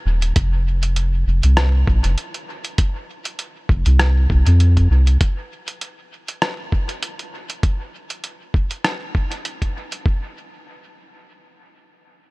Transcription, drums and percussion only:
0, 0, Header, 1, 2, 480
1, 0, Start_track
1, 0, Tempo, 606061
1, 285, Time_signature, 4, 2, 24, 8
1, 9746, End_track
2, 0, Start_track
2, 0, Title_t, "Drums"
2, 176, Note_on_c, 9, 42, 41
2, 255, Note_off_c, 9, 42, 0
2, 284, Note_on_c, 9, 42, 51
2, 286, Note_on_c, 9, 36, 117
2, 363, Note_off_c, 9, 42, 0
2, 365, Note_off_c, 9, 36, 0
2, 655, Note_on_c, 9, 42, 42
2, 735, Note_off_c, 9, 42, 0
2, 763, Note_on_c, 9, 42, 53
2, 842, Note_off_c, 9, 42, 0
2, 1135, Note_on_c, 9, 42, 41
2, 1214, Note_off_c, 9, 42, 0
2, 1243, Note_on_c, 9, 37, 87
2, 1243, Note_on_c, 9, 42, 52
2, 1322, Note_off_c, 9, 37, 0
2, 1322, Note_off_c, 9, 42, 0
2, 1485, Note_on_c, 9, 36, 101
2, 1564, Note_off_c, 9, 36, 0
2, 1615, Note_on_c, 9, 42, 42
2, 1694, Note_off_c, 9, 42, 0
2, 1724, Note_on_c, 9, 42, 51
2, 1803, Note_off_c, 9, 42, 0
2, 1856, Note_on_c, 9, 42, 29
2, 1935, Note_off_c, 9, 42, 0
2, 2095, Note_on_c, 9, 42, 40
2, 2174, Note_off_c, 9, 42, 0
2, 2203, Note_on_c, 9, 42, 50
2, 2205, Note_on_c, 9, 36, 117
2, 2282, Note_off_c, 9, 42, 0
2, 2284, Note_off_c, 9, 36, 0
2, 2576, Note_on_c, 9, 42, 41
2, 2656, Note_off_c, 9, 42, 0
2, 2684, Note_on_c, 9, 42, 51
2, 2763, Note_off_c, 9, 42, 0
2, 2924, Note_on_c, 9, 36, 97
2, 3004, Note_off_c, 9, 36, 0
2, 3056, Note_on_c, 9, 42, 39
2, 3135, Note_off_c, 9, 42, 0
2, 3164, Note_on_c, 9, 37, 88
2, 3164, Note_on_c, 9, 42, 51
2, 3243, Note_off_c, 9, 37, 0
2, 3243, Note_off_c, 9, 42, 0
2, 3405, Note_on_c, 9, 36, 101
2, 3484, Note_off_c, 9, 36, 0
2, 3536, Note_on_c, 9, 42, 41
2, 3615, Note_off_c, 9, 42, 0
2, 3644, Note_on_c, 9, 42, 49
2, 3723, Note_off_c, 9, 42, 0
2, 3777, Note_on_c, 9, 36, 59
2, 3778, Note_on_c, 9, 42, 28
2, 3856, Note_off_c, 9, 36, 0
2, 3857, Note_off_c, 9, 42, 0
2, 4016, Note_on_c, 9, 42, 38
2, 4096, Note_off_c, 9, 42, 0
2, 4124, Note_on_c, 9, 42, 49
2, 4125, Note_on_c, 9, 36, 118
2, 4203, Note_off_c, 9, 42, 0
2, 4204, Note_off_c, 9, 36, 0
2, 4497, Note_on_c, 9, 42, 40
2, 4576, Note_off_c, 9, 42, 0
2, 4604, Note_on_c, 9, 42, 50
2, 4684, Note_off_c, 9, 42, 0
2, 4977, Note_on_c, 9, 42, 37
2, 5056, Note_off_c, 9, 42, 0
2, 5084, Note_on_c, 9, 37, 89
2, 5084, Note_on_c, 9, 42, 48
2, 5163, Note_off_c, 9, 37, 0
2, 5163, Note_off_c, 9, 42, 0
2, 5325, Note_on_c, 9, 36, 97
2, 5404, Note_off_c, 9, 36, 0
2, 5457, Note_on_c, 9, 42, 38
2, 5536, Note_off_c, 9, 42, 0
2, 5564, Note_on_c, 9, 42, 49
2, 5643, Note_off_c, 9, 42, 0
2, 5697, Note_on_c, 9, 42, 27
2, 5776, Note_off_c, 9, 42, 0
2, 5937, Note_on_c, 9, 42, 37
2, 6017, Note_off_c, 9, 42, 0
2, 6045, Note_on_c, 9, 36, 112
2, 6045, Note_on_c, 9, 42, 45
2, 6124, Note_off_c, 9, 36, 0
2, 6124, Note_off_c, 9, 42, 0
2, 6417, Note_on_c, 9, 42, 37
2, 6496, Note_off_c, 9, 42, 0
2, 6524, Note_on_c, 9, 42, 45
2, 6603, Note_off_c, 9, 42, 0
2, 6765, Note_on_c, 9, 36, 93
2, 6844, Note_off_c, 9, 36, 0
2, 6896, Note_on_c, 9, 42, 35
2, 6975, Note_off_c, 9, 42, 0
2, 7005, Note_on_c, 9, 37, 84
2, 7005, Note_on_c, 9, 42, 46
2, 7084, Note_off_c, 9, 37, 0
2, 7084, Note_off_c, 9, 42, 0
2, 7245, Note_on_c, 9, 36, 93
2, 7324, Note_off_c, 9, 36, 0
2, 7378, Note_on_c, 9, 42, 37
2, 7457, Note_off_c, 9, 42, 0
2, 7485, Note_on_c, 9, 42, 44
2, 7564, Note_off_c, 9, 42, 0
2, 7617, Note_on_c, 9, 36, 54
2, 7619, Note_on_c, 9, 42, 25
2, 7696, Note_off_c, 9, 36, 0
2, 7698, Note_off_c, 9, 42, 0
2, 7857, Note_on_c, 9, 42, 36
2, 7936, Note_off_c, 9, 42, 0
2, 7965, Note_on_c, 9, 36, 101
2, 8044, Note_off_c, 9, 36, 0
2, 9746, End_track
0, 0, End_of_file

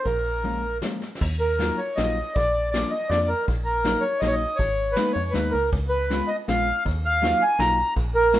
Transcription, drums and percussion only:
0, 0, Header, 1, 2, 480
1, 0, Start_track
1, 0, Key_signature, -6, "minor"
1, 0, Tempo, 383877
1, 66, Time_signature, 3, 2, 24, 8
1, 2948, Tempo, 373832
1, 10701, End_track
2, 0, Start_track
2, 0, Title_t, "Drums"
2, 69, Note_on_c, 9, 51, 44
2, 70, Note_on_c, 9, 36, 70
2, 194, Note_off_c, 9, 51, 0
2, 195, Note_off_c, 9, 36, 0
2, 303, Note_on_c, 9, 51, 42
2, 428, Note_off_c, 9, 51, 0
2, 533, Note_on_c, 9, 51, 37
2, 658, Note_off_c, 9, 51, 0
2, 1022, Note_on_c, 9, 38, 57
2, 1022, Note_on_c, 9, 51, 37
2, 1147, Note_off_c, 9, 38, 0
2, 1147, Note_off_c, 9, 51, 0
2, 1272, Note_on_c, 9, 38, 36
2, 1397, Note_off_c, 9, 38, 0
2, 1441, Note_on_c, 9, 38, 50
2, 1513, Note_on_c, 9, 49, 74
2, 1516, Note_on_c, 9, 36, 83
2, 1566, Note_off_c, 9, 38, 0
2, 1638, Note_off_c, 9, 49, 0
2, 1642, Note_off_c, 9, 36, 0
2, 1999, Note_on_c, 9, 38, 66
2, 1999, Note_on_c, 9, 51, 53
2, 2124, Note_off_c, 9, 38, 0
2, 2124, Note_off_c, 9, 51, 0
2, 2470, Note_on_c, 9, 38, 64
2, 2470, Note_on_c, 9, 51, 52
2, 2595, Note_off_c, 9, 38, 0
2, 2595, Note_off_c, 9, 51, 0
2, 2948, Note_on_c, 9, 51, 43
2, 2950, Note_on_c, 9, 36, 94
2, 3076, Note_off_c, 9, 51, 0
2, 3078, Note_off_c, 9, 36, 0
2, 3438, Note_on_c, 9, 38, 65
2, 3438, Note_on_c, 9, 51, 57
2, 3566, Note_off_c, 9, 38, 0
2, 3566, Note_off_c, 9, 51, 0
2, 3914, Note_on_c, 9, 38, 56
2, 3914, Note_on_c, 9, 51, 36
2, 4043, Note_off_c, 9, 38, 0
2, 4043, Note_off_c, 9, 51, 0
2, 4389, Note_on_c, 9, 51, 44
2, 4390, Note_on_c, 9, 36, 80
2, 4517, Note_off_c, 9, 51, 0
2, 4519, Note_off_c, 9, 36, 0
2, 4865, Note_on_c, 9, 38, 65
2, 4865, Note_on_c, 9, 51, 42
2, 4993, Note_off_c, 9, 38, 0
2, 4993, Note_off_c, 9, 51, 0
2, 5337, Note_on_c, 9, 38, 58
2, 5337, Note_on_c, 9, 51, 43
2, 5466, Note_off_c, 9, 38, 0
2, 5466, Note_off_c, 9, 51, 0
2, 5812, Note_on_c, 9, 51, 50
2, 5818, Note_on_c, 9, 36, 81
2, 5940, Note_off_c, 9, 51, 0
2, 5947, Note_off_c, 9, 36, 0
2, 6292, Note_on_c, 9, 38, 74
2, 6292, Note_on_c, 9, 51, 58
2, 6421, Note_off_c, 9, 38, 0
2, 6421, Note_off_c, 9, 51, 0
2, 6779, Note_on_c, 9, 38, 53
2, 6779, Note_on_c, 9, 51, 47
2, 6908, Note_off_c, 9, 38, 0
2, 6908, Note_off_c, 9, 51, 0
2, 7262, Note_on_c, 9, 51, 51
2, 7274, Note_on_c, 9, 36, 85
2, 7390, Note_off_c, 9, 51, 0
2, 7403, Note_off_c, 9, 36, 0
2, 7763, Note_on_c, 9, 38, 61
2, 7763, Note_on_c, 9, 51, 50
2, 7891, Note_off_c, 9, 38, 0
2, 7891, Note_off_c, 9, 51, 0
2, 8243, Note_on_c, 9, 38, 57
2, 8243, Note_on_c, 9, 51, 42
2, 8371, Note_off_c, 9, 38, 0
2, 8371, Note_off_c, 9, 51, 0
2, 8728, Note_on_c, 9, 36, 82
2, 8728, Note_on_c, 9, 51, 48
2, 8856, Note_off_c, 9, 51, 0
2, 8857, Note_off_c, 9, 36, 0
2, 9205, Note_on_c, 9, 38, 57
2, 9205, Note_on_c, 9, 51, 45
2, 9334, Note_off_c, 9, 38, 0
2, 9334, Note_off_c, 9, 51, 0
2, 9670, Note_on_c, 9, 38, 58
2, 9670, Note_on_c, 9, 51, 51
2, 9798, Note_off_c, 9, 38, 0
2, 9798, Note_off_c, 9, 51, 0
2, 10149, Note_on_c, 9, 36, 75
2, 10151, Note_on_c, 9, 51, 56
2, 10278, Note_off_c, 9, 36, 0
2, 10279, Note_off_c, 9, 51, 0
2, 10626, Note_on_c, 9, 38, 73
2, 10626, Note_on_c, 9, 51, 47
2, 10701, Note_off_c, 9, 38, 0
2, 10701, Note_off_c, 9, 51, 0
2, 10701, End_track
0, 0, End_of_file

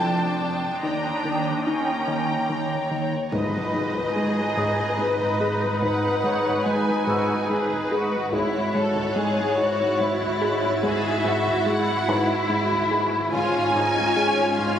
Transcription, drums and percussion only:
0, 0, Header, 1, 2, 480
1, 0, Start_track
1, 0, Tempo, 833333
1, 476, Time_signature, 3, 2, 24, 8
1, 8520, End_track
2, 0, Start_track
2, 0, Title_t, "Taiko and cinematic ensemble drums"
2, 1912, Note_on_c, 9, 41, 75
2, 1970, Note_off_c, 9, 41, 0
2, 2274, Note_on_c, 9, 41, 61
2, 2331, Note_off_c, 9, 41, 0
2, 2632, Note_on_c, 9, 41, 62
2, 2690, Note_off_c, 9, 41, 0
2, 2994, Note_on_c, 9, 41, 64
2, 3052, Note_off_c, 9, 41, 0
2, 3352, Note_on_c, 9, 41, 76
2, 3410, Note_off_c, 9, 41, 0
2, 3715, Note_on_c, 9, 41, 61
2, 3772, Note_off_c, 9, 41, 0
2, 4075, Note_on_c, 9, 41, 65
2, 4132, Note_off_c, 9, 41, 0
2, 4435, Note_on_c, 9, 41, 63
2, 4492, Note_off_c, 9, 41, 0
2, 4796, Note_on_c, 9, 41, 84
2, 4853, Note_off_c, 9, 41, 0
2, 5157, Note_on_c, 9, 41, 67
2, 5215, Note_off_c, 9, 41, 0
2, 5518, Note_on_c, 9, 41, 67
2, 5576, Note_off_c, 9, 41, 0
2, 5877, Note_on_c, 9, 41, 70
2, 5934, Note_off_c, 9, 41, 0
2, 6238, Note_on_c, 9, 41, 88
2, 6296, Note_off_c, 9, 41, 0
2, 6600, Note_on_c, 9, 41, 69
2, 6658, Note_off_c, 9, 41, 0
2, 6962, Note_on_c, 9, 41, 73
2, 7020, Note_off_c, 9, 41, 0
2, 7321, Note_on_c, 9, 41, 73
2, 7379, Note_off_c, 9, 41, 0
2, 7681, Note_on_c, 9, 41, 89
2, 7739, Note_off_c, 9, 41, 0
2, 8040, Note_on_c, 9, 41, 73
2, 8098, Note_off_c, 9, 41, 0
2, 8399, Note_on_c, 9, 41, 70
2, 8457, Note_off_c, 9, 41, 0
2, 8520, End_track
0, 0, End_of_file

